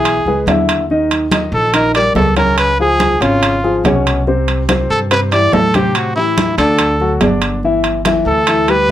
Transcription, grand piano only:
0.00 0.19 E3 medium
0.00 0.19 E4 medium
0.00 0.19 E5 medium
0.27 0.44 G#3 medium
0.27 0.44 G#4 medium
0.27 0.44 B4 medium
0.49 0.83 D3 medium
0.49 0.83 E4 medium
0.49 0.83 E5 medium
0.91 1.25 D#3 medium
0.91 1.25 D#4 medium
0.91 1.25 D#5 medium
1.32 1.67 D#3 medium
1.32 1.67 D#4 medium
1.32 1.67 D#5 medium
1.74 1.91 D#3 medium
1.74 1.91 D#4 medium
1.74 1.91 D#5 medium
1.96 2.30 G3 medium
1.96 2.30 G4 medium
1.96 2.30 A#4 medium
2.37 2.71 C#3 medium
2.37 2.71 C#4 medium
2.37 2.72 C#5 medium
2.79 3.14 F3 medium
2.79 3.14 F4 medium
2.79 3.14 G#4 medium
3.21 3.55 C#3 medium
3.21 3.56 C#4 medium
3.21 3.56 C#5 medium
3.64 3.81 F3 medium
3.64 3.81 F4 medium
3.64 3.81 G#4 medium
3.85 4.19 B2 medium
3.85 4.20 C#4 medium
3.85 4.20 C#5 medium
4.27 4.61 C3 medium
4.27 4.62 C4 medium
4.27 4.62 C5 medium
4.69 5.04 C3 medium
4.69 5.04 C4 medium
4.69 5.04 C5 medium
5.11 5.28 C3 medium
5.11 5.28 C4 medium
5.11 5.29 C5 medium
5.33 5.67 E3 medium
5.33 5.67 E4 medium
5.33 5.67 G4 medium
5.75 6.09 C3 medium
5.75 6.10 C4 medium
5.75 6.09 C5 medium
6.17 6.51 E3 medium
6.17 6.51 E4 medium
6.17 6.52 G4 medium
6.58 6.93 D3 medium
6.58 6.93 D4 medium
6.58 6.93 D5 medium
7.01 7.18 F#3 medium
7.01 7.18 F#4 medium
7.01 7.18 A4 medium
7.22 7.56 D3 medium
7.22 7.56 D4 medium
7.22 7.57 D5 medium
7.64 7.99 E3 medium
7.64 7.99 E4 medium
7.64 7.99 E5 medium
8.06 8.41 E3 medium
8.06 8.40 E4 medium
8.06 8.41 E5 medium
8.48 8.65 E3 medium
8.48 8.65 E4 medium
8.48 8.65 E5 medium
8.68 8.91 G3 medium
8.68 8.91 G4 medium
8.68 8.91 B4 medium

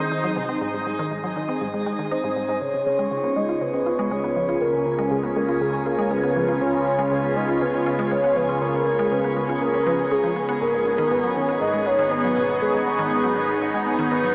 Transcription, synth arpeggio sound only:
0.11 0.16 D#3 medium
0.24 0.36 F#3 medium
0.36 0.44 C3 medium
0.49 0.61 C4 medium
0.61 0.69 G#2 medium
0.74 0.82 G#2 medium
0.86 0.94 G#2 medium
0.99 1.11 D#3 loud
1.11 1.19 G#2 medium
1.24 1.36 F#3 medium
1.36 1.44 D#3 medium
1.49 1.61 C4 medium
1.61 1.69 G#2 medium
1.74 1.82 G#3 medium
1.86 1.98 G#3 medium
1.99 2.04 D#3 medium
2.11 2.23 D#4 medium
2.24 2.29 G#2 medium
2.36 2.44 G#2 medium
2.49 2.53 G#2 loud
2.61 2.69 C#3 medium
2.74 2.82 C#3 medium
2.86 2.94 C#3 medium
2.99 3.11 G#3 medium
3.11 3.19 C#3 medium
3.24 3.36 B3 medium
3.36 3.44 G#3 medium
3.49 3.61 F4 medium
3.61 3.69 C#3 medium
3.74 3.82 C#4 medium
3.86 3.98 F4 medium
3.99 4.07 G#3 loud
4.11 4.16 G#3 medium
4.24 4.36 B3 medium
4.36 4.44 F3 medium
4.49 4.61 F4 medium
4.61 4.69 C#3 medium
4.74 4.82 C#3 medium
4.86 4.94 C#3 medium
4.99 5.11 G#3 loud
5.11 5.19 C#3 medium
5.24 5.36 B3 medium
5.36 5.44 G#3 medium
5.49 5.61 F4 medium
5.61 5.69 C#3 medium
5.74 5.82 C#4 medium
5.86 5.98 F4 medium
5.99 6.07 G#3 loud
6.11 6.16 G#3 medium
6.24 6.36 B3 medium
6.36 6.44 F3 medium
6.49 6.61 F4 medium
6.61 6.69 C#3 medium
6.74 6.82 C#3 medium
6.86 6.94 C#3 medium
6.99 7.11 G#3 loud
7.11 7.19 C#3 medium
7.24 7.36 B3 medium
7.36 7.44 G#3 medium
7.49 7.61 F4 medium
7.61 7.69 C#3 medium
7.74 7.82 C#4 medium
7.86 7.98 F4 medium
7.99 8.07 G#3 loud
8.11 8.16 G#3 medium
8.24 8.36 B3 medium
8.36 8.44 F3 medium
8.49 8.61 F4 medium
8.61 8.69 C#3 medium
8.74 8.82 C#3 medium
8.86 8.94 C#3 medium
8.99 9.11 G#3 loud
9.12 9.19 C#3 medium
9.24 9.36 B3 medium
9.36 9.44 G#3 medium
9.49 9.61 F4 medium
9.61 9.69 C#3 medium
9.74 9.82 C#4 medium
9.86 9.94 F3 loud
9.99 10.11 G#4 medium
10.11 10.23 C#4 medium
10.24 10.29 F3 medium
10.36 10.47 B3 medium
10.49 10.61 B3 loud
10.61 10.69 G#2 medium
10.74 10.82 G#2 medium
10.86 10.94 G#2 medium
10.99 11.11 D#3 loud
11.11 11.19 G#2 medium
11.24 11.36 F#3 medium
11.36 11.44 D#3 medium
11.49 11.61 B3 medium
11.61 11.69 G#2 medium
11.74 11.82 G#3 medium
11.86 11.98 B3 medium
11.99 12.07 D#3 loud
12.11 12.16 D#3 medium
12.24 12.36 F#3 medium
12.36 12.44 B2 medium
12.49 12.61 B3 medium
12.61 12.69 G#2 medium
12.74 12.82 G#2 medium
12.86 12.94 G#2 medium
12.99 13.11 D#3 loud
13.11 13.19 G#2 medium
13.24 13.36 F#3 medium
13.36 13.44 D#3 medium
13.49 13.61 B3 medium
13.61 13.69 G#2 medium
13.74 13.82 G#3 medium
13.86 13.98 B3 medium
13.99 14.07 D#3 loud
14.11 14.16 D#3 medium
14.24 14.35 F#3 medium

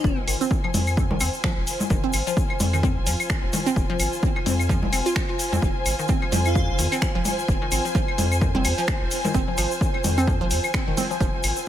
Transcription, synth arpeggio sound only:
0.28 0.33 D#3 medium
0.41 0.43 C4 loud
0.64 0.68 F3 loud
1.11 1.15 D#3 medium
1.21 1.24 C4 loud
1.44 1.49 F3 loud
1.90 1.96 D#3 medium
2.04 2.06 C4 loud
2.27 2.31 F3 loud
2.73 2.77 D#3 medium
2.83 2.87 C4 loud
3.07 3.12 F3 loud
3.53 3.59 D#3 medium
3.66 3.69 C4 loud
3.90 3.94 F3 loud
4.36 4.40 D#3 medium
4.46 4.49 C4 loud
4.69 4.75 F3 loud
4.93 4.96 C4 loud
5.06 5.10 F4 loud
5.29 5.35 F4 medium
5.52 5.57 C4 medium
5.99 6.03 D#3 medium
6.09 6.12 C4 loud
6.22 6.25 F3 medium
6.32 6.38 F3 loud
6.79 6.84 D#3 medium
6.92 6.94 C4 loud
7.02 7.05 F3 medium
7.15 7.19 F3 loud
7.62 7.66 D#3 medium
7.72 7.75 C4 loud
7.85 7.87 F3 medium
7.95 8.00 F3 loud
8.41 8.47 D#3 medium
8.55 8.57 C4 loud
8.65 8.68 F3 medium
8.78 8.82 F3 loud
9.25 9.29 D#3 medium
9.34 9.38 C4 loud
9.48 9.50 F3 medium
9.58 9.63 F3 loud
10.04 10.10 D#3 medium
10.18 10.20 C4 loud
10.28 10.31 F3 medium
10.41 10.45 F3 loud
10.87 10.91 D#3 medium
10.97 11.01 C4 loud
11.11 11.13 F3 medium
11.21 11.26 F3 loud

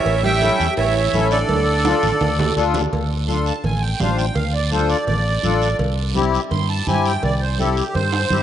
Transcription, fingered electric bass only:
0.06 0.49 A1 loud
0.60 0.67 E2 medium
0.78 1.06 A1 loud
1.14 1.42 A1 loud
1.49 1.92 D2 medium
2.03 2.10 A1 medium
2.21 2.50 D2 loud
2.57 2.85 D2 medium
2.93 3.50 D2 medium
3.64 3.93 A1 medium
4.00 4.29 A1 medium
4.36 4.93 D2 loud
5.08 5.36 A1 medium
5.44 5.73 A1 medium
5.80 6.37 C2 loud
6.52 6.80 G2 loud
6.88 7.16 G2 medium
7.23 7.81 C2 loud
7.95 8.24 G2 loud
8.31 8.43 G2 medium

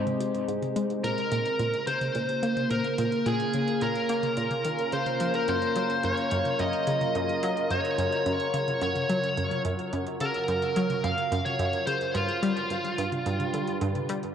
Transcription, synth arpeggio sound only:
0.20 0.36 C3 medium
0.48 0.63 G#2 loud
0.76 0.85 G#3 loud
1.04 1.13 A#2 medium
1.32 1.41 A#2 loud
1.59 1.75 A#2 loud
1.87 2.02 C#3 medium
2.15 2.30 A#2 loud
2.43 2.52 A#3 loud
2.71 2.80 A#2 medium
2.98 3.08 A#2 loud
3.26 3.41 A#2 loud
3.54 3.69 C#3 medium
3.82 3.97 A#2 loud
4.10 4.19 A#3 loud
4.37 4.46 A#2 medium
4.65 4.88 D#3 medium
4.93 5.08 C#3 medium
5.21 5.36 F3 medium
5.48 5.64 F#2 loud
5.76 5.85 F#3 loud
6.04 6.13 F#2 medium
6.32 6.41 F#2 loud
6.60 6.75 F#2 loud
6.87 7.03 C#3 medium
7.15 7.30 F#2 loud
7.43 7.52 F#3 loud
7.70 7.80 F#2 medium
7.98 8.07 F#2 loud
8.26 8.41 F#2 loud
8.54 8.69 C#3 medium
8.82 8.97 F#2 loud
9.10 9.19 F#3 loud
9.38 9.47 F#2 medium
9.65 9.74 F#2 loud
9.93 10.08 F#2 loud
10.21 10.36 C#3 medium
10.48 10.64 F#2 loud
10.76 10.85 F#3 loud
11.04 11.13 F#2 medium
11.32 11.41 F#2 loud
11.59 11.75 F#2 loud
11.87 12.02 C#3 medium
12.15 12.30 G2 loud
12.43 12.52 G3 loud
12.71 12.80 G2 medium
12.98 13.08 G2 loud
13.26 13.41 G2 loud
13.54 13.69 D3 medium
13.82 13.97 G2 loud
14.09 14.19 G3 loud

